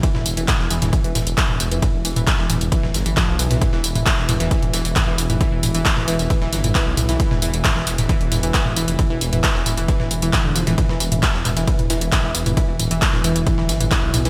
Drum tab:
RD |x-x-x-x-x-x-x-x-|x-x-x-xxx-x-x-x-|x-x-x-x-x-x-x-x-|x-x-x-xxx-x-x-x-|
HH |x-oxx-oxxooxx-ox|x-oxx-oxx-oxx-oo|x-oxx-oxxooxx-ox|x-oxx-oxx-oxx-oo|
TB |x-xxx-xxx-xxx-xx|x-xxx-xxx-xxx-xx|x-xxx-xxx-xxx-xx|x-xxx-xxx-xxx-xx|
CP |----x-x-----x---|----x-------x---|----x-x-----x---|----x-------x---|
SD |-o--oo-o--o-o---|----oo---oo-o--o|-o--oo-o--o-o---|----oo---oo-o--o|
T2 |-o--o--o--o--o--|o--o--o--o--o--o|o--o--o--o--o--o|--o--o--o--o--o-|
BD |o---o---o---o---|o---o---o---o---|o---o---o---o---|o---o---o---o---|

RD |x-x-x-x-x-x-x-x-|x-x-x-xxx---x-x-|x-x-x-x-x-x-x-x-|x-x-x-xxx-x-x-x-|
HH |x-oxx-oxxooxx-ox|x-oxx-oxx-oxx-oo|x-oxx-oxxooxx-ox|x-oxx-oxx-oxx-oo|
TB |x-xxx-xxx-xxx-xx|x-xxx-xxx-xxx-xx|x-xxx-xxx-xxx-xx|x-xxx-xxx-xxx-xx|
CP |----x-x-----x---|----x-------x---|----x-x-----x---|----x-------x---|
SD |-o--oo-o--o-o---|----oo---o--o--o|-o--oo-o--o-o---|----oo---oo-o--o|
T2 |-o--o--o--o--o--|o--o--o--o--o--o|o--o--o--o--o--o|--o--o--o--o--o-|
BD |o---o---o---o---|o---o---o---o---|o---o---o---o---|o---o---o---o---|